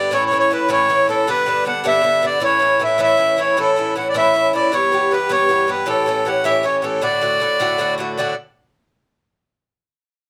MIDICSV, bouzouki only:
0, 0, Header, 1, 2, 480
1, 0, Start_track
1, 0, Key_signature, 2, "major"
1, 0, Tempo, 383142
1, 160, Time_signature, 6, 3, 24, 8
1, 12894, End_track
2, 0, Start_track
2, 0, Title_t, "Bouzouki"
2, 0, Program_c, 0, 25
2, 0, Note_on_c, 0, 43, 60
2, 0, Note_on_c, 0, 50, 59
2, 0, Note_on_c, 0, 59, 63
2, 0, Note_on_c, 0, 67, 65
2, 133, Note_off_c, 0, 43, 0
2, 138, Note_on_c, 0, 45, 72
2, 146, Note_off_c, 0, 50, 0
2, 151, Note_on_c, 0, 52, 74
2, 152, Note_off_c, 0, 67, 0
2, 157, Note_off_c, 0, 59, 0
2, 157, Note_on_c, 0, 64, 84
2, 162, Note_on_c, 0, 61, 80
2, 372, Note_off_c, 0, 45, 0
2, 383, Note_off_c, 0, 52, 0
2, 387, Note_on_c, 0, 45, 57
2, 395, Note_off_c, 0, 61, 0
2, 398, Note_on_c, 0, 52, 63
2, 399, Note_off_c, 0, 64, 0
2, 410, Note_on_c, 0, 61, 69
2, 421, Note_on_c, 0, 64, 69
2, 618, Note_off_c, 0, 45, 0
2, 630, Note_off_c, 0, 52, 0
2, 633, Note_on_c, 0, 45, 60
2, 645, Note_off_c, 0, 61, 0
2, 645, Note_on_c, 0, 52, 62
2, 650, Note_off_c, 0, 64, 0
2, 660, Note_on_c, 0, 61, 63
2, 664, Note_on_c, 0, 64, 66
2, 844, Note_off_c, 0, 45, 0
2, 856, Note_off_c, 0, 52, 0
2, 859, Note_on_c, 0, 45, 81
2, 866, Note_off_c, 0, 61, 0
2, 867, Note_off_c, 0, 64, 0
2, 871, Note_on_c, 0, 52, 88
2, 881, Note_on_c, 0, 61, 83
2, 882, Note_on_c, 0, 64, 84
2, 1096, Note_off_c, 0, 45, 0
2, 1107, Note_off_c, 0, 52, 0
2, 1109, Note_off_c, 0, 61, 0
2, 1111, Note_on_c, 0, 45, 59
2, 1116, Note_off_c, 0, 64, 0
2, 1122, Note_on_c, 0, 52, 58
2, 1125, Note_on_c, 0, 61, 70
2, 1131, Note_on_c, 0, 64, 72
2, 1333, Note_off_c, 0, 45, 0
2, 1348, Note_off_c, 0, 52, 0
2, 1348, Note_on_c, 0, 45, 61
2, 1353, Note_off_c, 0, 61, 0
2, 1363, Note_on_c, 0, 52, 64
2, 1365, Note_off_c, 0, 64, 0
2, 1368, Note_on_c, 0, 61, 69
2, 1379, Note_on_c, 0, 64, 71
2, 1590, Note_off_c, 0, 45, 0
2, 1595, Note_on_c, 0, 43, 78
2, 1598, Note_off_c, 0, 61, 0
2, 1600, Note_off_c, 0, 52, 0
2, 1603, Note_on_c, 0, 59, 85
2, 1605, Note_on_c, 0, 50, 87
2, 1609, Note_off_c, 0, 64, 0
2, 1616, Note_on_c, 0, 62, 84
2, 1813, Note_off_c, 0, 43, 0
2, 1821, Note_off_c, 0, 50, 0
2, 1828, Note_on_c, 0, 43, 64
2, 1834, Note_off_c, 0, 59, 0
2, 1836, Note_on_c, 0, 50, 63
2, 1844, Note_off_c, 0, 62, 0
2, 1849, Note_on_c, 0, 59, 62
2, 1859, Note_on_c, 0, 62, 71
2, 2051, Note_off_c, 0, 43, 0
2, 2060, Note_off_c, 0, 50, 0
2, 2066, Note_on_c, 0, 43, 61
2, 2070, Note_off_c, 0, 59, 0
2, 2075, Note_on_c, 0, 50, 65
2, 2078, Note_off_c, 0, 62, 0
2, 2085, Note_on_c, 0, 59, 66
2, 2093, Note_on_c, 0, 62, 68
2, 2286, Note_off_c, 0, 43, 0
2, 2299, Note_off_c, 0, 50, 0
2, 2302, Note_on_c, 0, 43, 81
2, 2305, Note_off_c, 0, 59, 0
2, 2310, Note_off_c, 0, 62, 0
2, 2314, Note_on_c, 0, 50, 85
2, 2320, Note_on_c, 0, 59, 84
2, 2325, Note_on_c, 0, 62, 89
2, 2509, Note_off_c, 0, 43, 0
2, 2524, Note_on_c, 0, 43, 63
2, 2527, Note_off_c, 0, 50, 0
2, 2537, Note_off_c, 0, 59, 0
2, 2542, Note_on_c, 0, 50, 63
2, 2543, Note_off_c, 0, 62, 0
2, 2552, Note_on_c, 0, 59, 61
2, 2558, Note_on_c, 0, 62, 74
2, 2763, Note_off_c, 0, 43, 0
2, 2774, Note_off_c, 0, 50, 0
2, 2776, Note_off_c, 0, 59, 0
2, 2778, Note_on_c, 0, 43, 61
2, 2789, Note_on_c, 0, 50, 63
2, 2791, Note_on_c, 0, 59, 67
2, 2793, Note_off_c, 0, 62, 0
2, 2808, Note_on_c, 0, 62, 72
2, 3005, Note_off_c, 0, 43, 0
2, 3010, Note_on_c, 0, 45, 68
2, 3017, Note_off_c, 0, 50, 0
2, 3020, Note_off_c, 0, 59, 0
2, 3023, Note_on_c, 0, 52, 78
2, 3025, Note_on_c, 0, 61, 82
2, 3027, Note_off_c, 0, 62, 0
2, 3032, Note_on_c, 0, 64, 77
2, 3236, Note_off_c, 0, 45, 0
2, 3248, Note_off_c, 0, 52, 0
2, 3251, Note_on_c, 0, 45, 65
2, 3263, Note_on_c, 0, 52, 60
2, 3264, Note_off_c, 0, 61, 0
2, 3269, Note_off_c, 0, 64, 0
2, 3279, Note_on_c, 0, 61, 64
2, 3284, Note_on_c, 0, 64, 64
2, 3487, Note_off_c, 0, 45, 0
2, 3497, Note_off_c, 0, 52, 0
2, 3502, Note_on_c, 0, 45, 59
2, 3507, Note_off_c, 0, 61, 0
2, 3512, Note_on_c, 0, 52, 63
2, 3515, Note_off_c, 0, 64, 0
2, 3522, Note_on_c, 0, 61, 64
2, 3530, Note_on_c, 0, 64, 63
2, 3718, Note_off_c, 0, 45, 0
2, 3729, Note_off_c, 0, 52, 0
2, 3733, Note_on_c, 0, 45, 75
2, 3737, Note_off_c, 0, 61, 0
2, 3744, Note_on_c, 0, 52, 77
2, 3745, Note_off_c, 0, 64, 0
2, 3752, Note_on_c, 0, 61, 88
2, 3760, Note_on_c, 0, 64, 81
2, 3960, Note_off_c, 0, 45, 0
2, 3971, Note_off_c, 0, 52, 0
2, 3975, Note_on_c, 0, 45, 67
2, 3981, Note_off_c, 0, 61, 0
2, 3987, Note_on_c, 0, 52, 61
2, 3989, Note_off_c, 0, 64, 0
2, 3996, Note_on_c, 0, 61, 62
2, 4004, Note_on_c, 0, 64, 66
2, 4203, Note_off_c, 0, 45, 0
2, 4216, Note_off_c, 0, 52, 0
2, 4218, Note_on_c, 0, 45, 60
2, 4224, Note_off_c, 0, 61, 0
2, 4231, Note_on_c, 0, 52, 63
2, 4236, Note_off_c, 0, 64, 0
2, 4239, Note_on_c, 0, 61, 67
2, 4251, Note_on_c, 0, 64, 69
2, 4457, Note_off_c, 0, 45, 0
2, 4467, Note_off_c, 0, 52, 0
2, 4467, Note_off_c, 0, 61, 0
2, 4472, Note_on_c, 0, 45, 75
2, 4473, Note_off_c, 0, 64, 0
2, 4482, Note_on_c, 0, 52, 70
2, 4482, Note_on_c, 0, 61, 80
2, 4488, Note_on_c, 0, 64, 75
2, 4700, Note_off_c, 0, 45, 0
2, 4712, Note_off_c, 0, 52, 0
2, 4715, Note_on_c, 0, 45, 59
2, 4720, Note_off_c, 0, 61, 0
2, 4723, Note_off_c, 0, 64, 0
2, 4727, Note_on_c, 0, 52, 63
2, 4736, Note_on_c, 0, 61, 64
2, 4745, Note_on_c, 0, 64, 69
2, 4939, Note_off_c, 0, 45, 0
2, 4946, Note_off_c, 0, 52, 0
2, 4954, Note_on_c, 0, 45, 60
2, 4956, Note_off_c, 0, 61, 0
2, 4961, Note_on_c, 0, 52, 66
2, 4962, Note_off_c, 0, 64, 0
2, 4971, Note_on_c, 0, 61, 63
2, 4977, Note_on_c, 0, 64, 64
2, 5175, Note_off_c, 0, 45, 0
2, 5180, Note_off_c, 0, 52, 0
2, 5190, Note_off_c, 0, 61, 0
2, 5190, Note_on_c, 0, 45, 80
2, 5194, Note_off_c, 0, 64, 0
2, 5195, Note_on_c, 0, 52, 87
2, 5205, Note_on_c, 0, 61, 86
2, 5209, Note_on_c, 0, 64, 85
2, 5420, Note_off_c, 0, 45, 0
2, 5432, Note_off_c, 0, 52, 0
2, 5435, Note_on_c, 0, 45, 60
2, 5442, Note_off_c, 0, 61, 0
2, 5444, Note_off_c, 0, 64, 0
2, 5447, Note_on_c, 0, 52, 61
2, 5458, Note_on_c, 0, 61, 63
2, 5464, Note_on_c, 0, 64, 69
2, 5662, Note_off_c, 0, 45, 0
2, 5672, Note_off_c, 0, 52, 0
2, 5677, Note_on_c, 0, 45, 69
2, 5683, Note_off_c, 0, 61, 0
2, 5687, Note_on_c, 0, 52, 61
2, 5691, Note_off_c, 0, 64, 0
2, 5698, Note_on_c, 0, 61, 66
2, 5707, Note_on_c, 0, 64, 74
2, 5907, Note_off_c, 0, 52, 0
2, 5908, Note_off_c, 0, 45, 0
2, 5913, Note_on_c, 0, 43, 72
2, 5922, Note_on_c, 0, 52, 74
2, 5924, Note_off_c, 0, 61, 0
2, 5928, Note_off_c, 0, 64, 0
2, 5929, Note_on_c, 0, 59, 80
2, 5933, Note_on_c, 0, 67, 81
2, 6149, Note_off_c, 0, 43, 0
2, 6156, Note_off_c, 0, 52, 0
2, 6164, Note_off_c, 0, 59, 0
2, 6164, Note_on_c, 0, 43, 62
2, 6166, Note_off_c, 0, 67, 0
2, 6171, Note_on_c, 0, 52, 60
2, 6180, Note_on_c, 0, 59, 67
2, 6191, Note_on_c, 0, 67, 70
2, 6390, Note_off_c, 0, 43, 0
2, 6400, Note_off_c, 0, 52, 0
2, 6405, Note_on_c, 0, 43, 62
2, 6409, Note_off_c, 0, 59, 0
2, 6415, Note_off_c, 0, 67, 0
2, 6415, Note_on_c, 0, 52, 60
2, 6426, Note_on_c, 0, 59, 69
2, 6440, Note_on_c, 0, 67, 74
2, 6615, Note_off_c, 0, 43, 0
2, 6622, Note_off_c, 0, 52, 0
2, 6630, Note_off_c, 0, 59, 0
2, 6630, Note_on_c, 0, 43, 82
2, 6637, Note_on_c, 0, 52, 84
2, 6644, Note_off_c, 0, 67, 0
2, 6645, Note_on_c, 0, 59, 88
2, 6659, Note_on_c, 0, 67, 90
2, 6858, Note_off_c, 0, 43, 0
2, 6862, Note_off_c, 0, 52, 0
2, 6873, Note_on_c, 0, 43, 58
2, 6874, Note_off_c, 0, 59, 0
2, 6877, Note_on_c, 0, 52, 68
2, 6884, Note_off_c, 0, 67, 0
2, 6889, Note_on_c, 0, 59, 66
2, 6899, Note_on_c, 0, 67, 72
2, 7089, Note_off_c, 0, 43, 0
2, 7100, Note_off_c, 0, 52, 0
2, 7104, Note_on_c, 0, 43, 62
2, 7113, Note_off_c, 0, 59, 0
2, 7115, Note_on_c, 0, 52, 62
2, 7119, Note_off_c, 0, 67, 0
2, 7128, Note_on_c, 0, 59, 69
2, 7134, Note_on_c, 0, 67, 62
2, 7332, Note_off_c, 0, 52, 0
2, 7334, Note_off_c, 0, 43, 0
2, 7339, Note_on_c, 0, 45, 76
2, 7343, Note_off_c, 0, 59, 0
2, 7346, Note_off_c, 0, 67, 0
2, 7347, Note_on_c, 0, 52, 83
2, 7348, Note_on_c, 0, 61, 78
2, 7361, Note_on_c, 0, 67, 82
2, 7577, Note_off_c, 0, 45, 0
2, 7592, Note_on_c, 0, 45, 62
2, 7593, Note_off_c, 0, 52, 0
2, 7593, Note_off_c, 0, 61, 0
2, 7600, Note_off_c, 0, 67, 0
2, 7608, Note_on_c, 0, 52, 63
2, 7617, Note_on_c, 0, 61, 66
2, 7625, Note_on_c, 0, 67, 73
2, 7815, Note_off_c, 0, 45, 0
2, 7828, Note_off_c, 0, 52, 0
2, 7830, Note_on_c, 0, 45, 65
2, 7836, Note_off_c, 0, 61, 0
2, 7843, Note_on_c, 0, 52, 64
2, 7851, Note_on_c, 0, 61, 65
2, 7852, Note_off_c, 0, 67, 0
2, 7866, Note_on_c, 0, 67, 66
2, 8055, Note_off_c, 0, 45, 0
2, 8066, Note_off_c, 0, 52, 0
2, 8069, Note_off_c, 0, 61, 0
2, 8070, Note_on_c, 0, 45, 80
2, 8077, Note_off_c, 0, 67, 0
2, 8081, Note_on_c, 0, 52, 92
2, 8084, Note_on_c, 0, 61, 80
2, 8092, Note_on_c, 0, 67, 92
2, 8291, Note_off_c, 0, 45, 0
2, 8301, Note_off_c, 0, 52, 0
2, 8305, Note_off_c, 0, 61, 0
2, 8306, Note_on_c, 0, 45, 59
2, 8316, Note_on_c, 0, 52, 60
2, 8320, Note_on_c, 0, 61, 69
2, 8321, Note_off_c, 0, 67, 0
2, 8337, Note_on_c, 0, 67, 65
2, 8530, Note_off_c, 0, 45, 0
2, 8545, Note_on_c, 0, 45, 62
2, 8546, Note_off_c, 0, 52, 0
2, 8552, Note_off_c, 0, 61, 0
2, 8558, Note_off_c, 0, 67, 0
2, 8561, Note_on_c, 0, 52, 67
2, 8567, Note_on_c, 0, 61, 64
2, 8573, Note_on_c, 0, 67, 73
2, 8773, Note_off_c, 0, 45, 0
2, 8788, Note_on_c, 0, 45, 72
2, 8790, Note_off_c, 0, 52, 0
2, 8795, Note_on_c, 0, 50, 82
2, 8797, Note_off_c, 0, 61, 0
2, 8802, Note_off_c, 0, 67, 0
2, 8802, Note_on_c, 0, 57, 80
2, 8807, Note_on_c, 0, 66, 85
2, 9022, Note_off_c, 0, 45, 0
2, 9030, Note_off_c, 0, 50, 0
2, 9037, Note_on_c, 0, 45, 67
2, 9041, Note_off_c, 0, 57, 0
2, 9043, Note_off_c, 0, 66, 0
2, 9045, Note_on_c, 0, 50, 63
2, 9054, Note_on_c, 0, 57, 69
2, 9067, Note_on_c, 0, 66, 66
2, 9256, Note_off_c, 0, 45, 0
2, 9271, Note_on_c, 0, 45, 55
2, 9273, Note_off_c, 0, 50, 0
2, 9276, Note_off_c, 0, 57, 0
2, 9288, Note_on_c, 0, 50, 64
2, 9290, Note_off_c, 0, 66, 0
2, 9291, Note_on_c, 0, 57, 65
2, 9305, Note_on_c, 0, 66, 66
2, 9501, Note_off_c, 0, 45, 0
2, 9507, Note_off_c, 0, 50, 0
2, 9514, Note_off_c, 0, 57, 0
2, 9516, Note_on_c, 0, 45, 81
2, 9522, Note_on_c, 0, 50, 83
2, 9524, Note_off_c, 0, 66, 0
2, 9529, Note_on_c, 0, 57, 97
2, 9539, Note_on_c, 0, 66, 89
2, 9733, Note_off_c, 0, 45, 0
2, 9745, Note_off_c, 0, 50, 0
2, 9748, Note_on_c, 0, 45, 68
2, 9760, Note_off_c, 0, 57, 0
2, 9760, Note_on_c, 0, 50, 76
2, 9769, Note_off_c, 0, 66, 0
2, 9775, Note_on_c, 0, 57, 72
2, 9783, Note_on_c, 0, 66, 74
2, 9978, Note_off_c, 0, 45, 0
2, 9992, Note_off_c, 0, 50, 0
2, 9993, Note_on_c, 0, 45, 68
2, 10007, Note_off_c, 0, 57, 0
2, 10007, Note_on_c, 0, 50, 71
2, 10011, Note_off_c, 0, 66, 0
2, 10023, Note_on_c, 0, 57, 74
2, 10027, Note_on_c, 0, 66, 73
2, 10227, Note_off_c, 0, 45, 0
2, 10238, Note_off_c, 0, 50, 0
2, 10242, Note_on_c, 0, 45, 71
2, 10251, Note_off_c, 0, 57, 0
2, 10253, Note_off_c, 0, 66, 0
2, 10253, Note_on_c, 0, 50, 82
2, 10264, Note_on_c, 0, 57, 88
2, 10272, Note_on_c, 0, 66, 81
2, 10433, Note_off_c, 0, 45, 0
2, 10438, Note_off_c, 0, 50, 0
2, 10444, Note_off_c, 0, 57, 0
2, 10448, Note_off_c, 0, 66, 0
2, 12894, End_track
0, 0, End_of_file